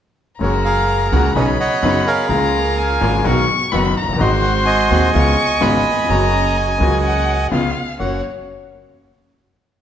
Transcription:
0.39 1.08 F#1 medium
0.39 1.08 F#2 medium
0.39 1.07 C#3 soft
0.39 1.08 F#3 medium
0.39 1.08 G#3 soft
0.39 1.08 G#3 medium
0.39 1.08 A#3 medium
0.39 1.09 A#3 soft
0.39 1.08 F#4 medium
0.39 0.63 G#4 soft
0.39 0.63 A#4 soft
0.39 0.52 C#5 medium
0.39 1.36 A#5 medium
0.43 1.09 F#4 medium
0.64 1.31 G#4 soft
0.64 1.31 A#4 medium
0.64 1.08 F5 medium
1.11 1.32 C#2 medium
1.11 1.32 C#3 medium
1.11 1.31 G#3 medium
1.11 1.32 G#3 soft
1.11 1.31 A#3 medium
1.11 1.32 A#3 soft
1.11 1.31 F#4 medium
1.11 1.32 F#4 medium
1.11 1.33 F#5 medium
1.35 1.55 B1 medium
1.35 1.56 B1 medium
1.35 1.56 B2 medium
1.35 1.56 C#3 medium
1.35 1.55 F#3 medium
1.35 1.55 B3 medium
1.35 1.56 B3 soft
1.35 1.55 C#4 soft
1.35 1.55 D#4 medium
1.35 1.56 D#4 medium
1.35 1.58 C#5 medium
1.35 1.58 D#5 medium
1.35 1.46 G#5 medium
1.35 2.31 B5 medium
1.59 2.26 C#5 medium
1.59 2.26 D#5 medium
1.59 2.08 F#5 medium
1.81 2.03 F#1 medium
1.81 2.02 F#2 medium
1.81 2.03 C#3 medium
1.81 2.02 F#3 medium
1.81 2.02 B3 medium
1.81 2.02 B3 soft
1.81 2.02 C#4 medium
1.81 2.02 D#4 medium
1.81 2.03 D#4 medium
2.06 3.44 G#4 medium
2.06 3.45 A#4 medium
2.06 3.45 F5 medium
2.28 2.97 C#2 medium
2.28 2.97 C#3 medium
2.28 2.97 G#3 medium
2.28 2.98 A#3 medium
2.28 2.98 C#4 medium
2.28 2.98 F4 medium
2.28 2.79 A#5 medium
2.78 3.27 G#5 medium
3.01 3.21 G#1 medium
3.01 3.21 G#2 medium
3.01 3.21 C#3 medium
3.01 3.21 G#3 medium
3.01 3.21 A#3 medium
3.01 3.21 C#4 medium
3.01 3.21 F4 medium
3.24 3.45 B1 medium
3.24 3.45 B2 medium
3.24 3.44 D#3 medium
3.24 3.45 F#3 medium
3.24 3.44 B3 medium
3.24 3.45 B3 medium
3.24 3.45 D#4 medium
3.24 3.45 F#4 medium
3.24 3.73 C#6 medium
3.72 3.92 F#1 medium
3.72 3.93 F#1 medium
3.72 3.92 F#2 medium
3.72 3.92 D#3 medium
3.72 3.92 F#3 medium
3.72 3.92 B3 medium
3.72 3.92 D#4 medium
3.72 3.92 F#4 medium
3.72 3.99 B5 medium
3.97 4.23 A#5 medium
4.02 4.08 F1 soft
4.08 4.14 F#1 soft
4.13 4.19 G1 medium
4.13 4.20 G1 medium
4.13 4.85 D#3 medium
4.18 4.87 G#1 medium
4.18 4.88 G#1 medium
4.18 4.86 G#2 medium
4.18 4.86 G#3 soft
4.18 4.87 G#3 medium
4.18 4.87 C4 soft
4.18 4.87 C4 medium
4.18 4.87 F#4 medium
4.18 5.11 F#4 medium
4.18 4.88 F#4 medium
4.18 4.65 C5 soft
4.18 4.30 D#5 medium
4.18 5.15 C6 medium
4.43 4.53 F#5 medium
4.65 5.11 C5 medium
4.65 7.48 D#5 medium
4.65 7.47 G#5 medium
4.90 5.11 D#1 medium
4.90 5.10 D#2 medium
4.90 5.11 D#2 medium
4.90 5.10 D#3 medium
4.90 5.10 G#3 medium
4.90 5.10 C4 medium
4.90 5.11 C4 medium
4.90 5.11 F#4 medium
5.14 5.34 C#2 medium
5.14 5.35 C#2 medium
5.14 5.34 C#3 medium
5.14 5.34 G#3 medium
5.14 5.34 B3 medium
5.14 5.34 C#4 medium
5.14 5.34 F4 medium
5.14 5.35 F4 medium
5.14 5.64 C#6 medium
5.60 5.81 G#1 medium
5.60 5.82 G#1 medium
5.60 5.81 G#2 medium
5.60 5.81 C#3 medium
5.60 5.81 G#3 medium
5.60 5.81 B3 medium
5.60 5.81 C#4 medium
5.60 5.81 F4 medium
5.60 5.82 F4 medium
5.60 6.12 B5 medium
5.91 5.97 D#2 soft
5.97 6.03 E2 soft
6.04 6.10 F2 medium
6.04 6.76 C#3 medium
6.08 6.77 F#1 medium
6.08 6.77 F#2 medium
6.08 6.77 F#3 medium
6.08 6.76 A#3 medium
6.08 6.77 A#3 soft
6.08 6.77 C#4 medium
6.08 6.77 F#4 medium
6.08 6.78 F#4 medium
6.08 6.59 A#5 medium
6.57 7.04 G#5 medium
6.80 7.48 C#2 medium
6.80 7.48 C#3 medium
6.80 7.48 F#3 medium
6.80 7.48 A#3 medium
6.80 7.49 A#3 medium
6.80 7.48 C#4 medium
6.80 7.48 F#4 medium
6.80 7.49 F#4 medium
7.05 7.49 F#5 medium
7.51 7.72 C#2 medium
7.51 7.72 C#3 medium
7.51 7.72 G#3 soft
7.51 7.72 B3 medium
7.51 7.72 B3 soft
7.51 7.72 C#4 medium
7.51 7.72 F4 medium
7.51 7.96 F5 medium
7.99 8.20 F#1 soft
7.99 8.19 F#2 soft
7.99 8.19 A#3 soft
7.99 8.19 C#4 soft
7.99 8.19 F#4 soft
7.99 8.22 C#5 medium
7.99 8.21 F#5 medium

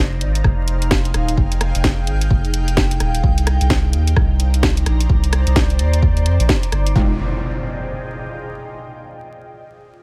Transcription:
0.00 0.23 F1 medium
0.00 6.96 D#4 medium
0.00 3.24 G#4 medium
0.00 1.02 C5 medium
0.00 4.08 F5 medium
0.00 1.02 A#5 medium
0.21 0.43 G#1 medium
0.21 closed hi-hat medium
0.35 closed hi-hat medium
0.44 1.13 F1 medium
0.44 4.73 G5 medium
0.44 kick loud
0.44 cross-stick medium
0.68 closed hi-hat loud
0.82 closed hi-hat medium
0.91 kick loud
0.91 snare loud
1.05 closed hi-hat medium
1.14 1.36 D#1 medium
1.14 cross-stick medium
1.14 closed hi-hat medium
1.28 closed hi-hat medium
1.37 1.73 F1 loud
1.37 kick loud
1.52 closed hi-hat medium
1.61 cross-stick medium
1.61 closed hi-hat loud
1.75 2.09 F1 medium
1.75 closed hi-hat medium
1.84 kick loud
1.84 snare loud
2.07 2.29 G#1 medium
2.07 closed hi-hat medium
2.21 closed hi-hat medium
2.31 2.99 F1 loud
2.31 kick loud
2.45 closed hi-hat soft
2.54 closed hi-hat loud
2.68 closed hi-hat medium
2.77 kick loud
2.77 snare loud
2.91 closed hi-hat medium
3.00 3.22 D#1 medium
3.00 cross-stick medium
3.00 closed hi-hat medium
3.15 closed hi-hat medium
3.23 3.59 C2 loud
3.23 kick loud
3.38 closed hi-hat medium
3.47 cross-stick medium
3.47 closed hi-hat loud
3.61 3.95 C2 medium
3.61 6.96 A#5 medium
3.61 closed hi-hat medium
3.66 6.96 C5 medium
3.70 kick loud
3.70 snare loud
3.90 4.15 D#2 medium
3.90 6.96 D5 medium
3.90 closed hi-hat loud
4.08 closed hi-hat medium
4.16 4.85 C2 medium
4.16 kick loud
4.16 cross-stick medium
4.40 closed hi-hat loud
4.54 closed hi-hat medium
4.63 kick loud
4.63 snare loud
4.77 closed hi-hat medium
4.86 5.08 A#1 medium
4.86 cross-stick medium
4.86 closed hi-hat loud
5.00 closed hi-hat medium
5.09 5.45 C2 loud
5.09 kick loud
5.24 closed hi-hat medium
5.33 cross-stick medium
5.33 closed hi-hat loud
5.47 5.81 C2 medium
5.47 closed hi-hat medium
5.56 kick loud
5.56 snare loud
5.70 closed hi-hat soft
5.79 6.27 D#2 medium
5.79 closed hi-hat loud
5.94 closed hi-hat medium
6.02 kick loud
6.17 closed hi-hat soft
6.26 6.38 F2 medium
6.26 closed hi-hat loud
6.40 6.48 A#1 loud
6.40 closed hi-hat medium
6.49 kick loud
6.49 snare loud
6.63 closed hi-hat medium
6.72 6.94 G1 medium
6.72 cross-stick medium
6.72 closed hi-hat loud
6.86 closed hi-hat medium
6.96 7.17 F1 loud
6.96 7.14 G#3 medium
6.96 7.14 D#4 medium
6.96 7.14 F4 medium
6.96 8.78 F4 medium
6.96 7.14 G4 loud
6.96 kick loud
6.96 impact medium
7.04 8.78 G#4 medium
7.12 8.78 D#5 medium
7.17 8.78 G5 medium

